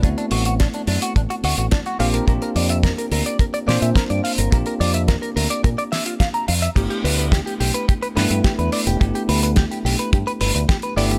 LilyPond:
<<
  \new Staff \with { instrumentName = "Clean electric guitar" } { \time 4/4 \key g \major \tempo 4 = 107 d'16 d'16 fis'16 fis'16 d'16 d'16 d'16 fis'16 d'16 fis'16 fis'16 fis'16 d'16 fis'16 f''16 bes'16 | bes'16 bes'16 d''16 e''16 bes'16 bes'16 bes'16 d''16 bes'16 d''16 d''16 e''16 bes'16 d''16 f''16 bes'16 | bes'16 bes'16 d''16 e''16 bes'16 bes'16 bes'16 d''16 bes'16 d''16 e''16 f'16 f''16 bes''16 f''16 e''16 | g'16 g'16 b'16 b'16 g'16 g'16 g'16 b'16 g'16 b'16 b'16 b'16 g'16 b'16 d''16 g'16 |
g'16 g'16 b'16 b'16 g'16 g'16 g'16 b'16 g'16 b'16 b'16 b'16 g'16 b'16 d''16 g'16 | }
  \new Staff \with { instrumentName = "Tine electric piano" } { \time 4/4 \key g \major <a b c' e' fis'>2.~ <a b c' e' fis'>8 <bes c' d' f' g'>8 | <bes c' d' f' g'>2~ <bes c' d' f' g'>8 <bes c' d' f' c''>4. | <bes c' d' f' g'>2.~ <bes c' d' f' g'>8 r8 | <a b d' e' g'>2~ <a b d' e' g'>8 <a b d' e' b'>4. |
<a b d' e' g'>2.~ <a b d' e' g'>8 <a b d' e' g'>8 | }
  \new Staff \with { instrumentName = "Fingered electric bass" } { \clef bass \time 4/4 \key g \major d,16 r16 a,,8 r8 fis,16 r16 a,,16 r16 d,16 a,,16 r8 bes,,16 r16 | bes,,16 r16 f,8 r8 d,16 r8. bes,16 bes,16 r16 g,16 r16 g,,16 | bes,,16 r16 f,8 r8 d,16 r16 bes,16 r4 r16 f,16 r16 | g,,16 r16 d,8 r8 b,,16 r8. g,16 g,16 r16 e,16 r16 e,,16 |
g,,16 r16 d,8 r8 b,,16 r16 g,16 r16 g,,16 d,16 r8 g,,16 r16 | }
  \new DrumStaff \with { instrumentName = "Drums" } \drummode { \time 4/4 <hh bd>16 hh16 hho16 hh16 <hh bd sn>16 hh16 hho16 hh16 <hh bd>16 hh16 hho16 hh16 <hh bd sn>16 hh16 hho16 hh16 | <hh bd>16 hh16 hho16 hh16 <hh bd sn>16 hh16 hho16 hh16 <hh bd>16 hh16 <hho sn>16 hh16 <hh bd sn>16 hh16 hho16 hh16 | <hh bd>16 hh16 hho16 hh16 <hh bd sn>16 hh16 hho16 hh16 <hh bd>16 hh16 <hho sn>16 hh16 <hh bd sn>16 hh16 hho16 hh16 | <cymc hh bd>16 hh16 hho16 hh16 <hh bd sn>16 hh16 hho16 hh16 <hh bd>16 hh16 <hho sn>16 hh16 <hh bd sn>16 hh16 hho16 hh16 |
<hh bd>16 hh16 hho16 hh16 <hh bd sn>16 hh16 hho16 hh16 <hh bd>16 hh16 hho16 hh16 <hh bd sn>16 hh16 hho16 hh16 | }
>>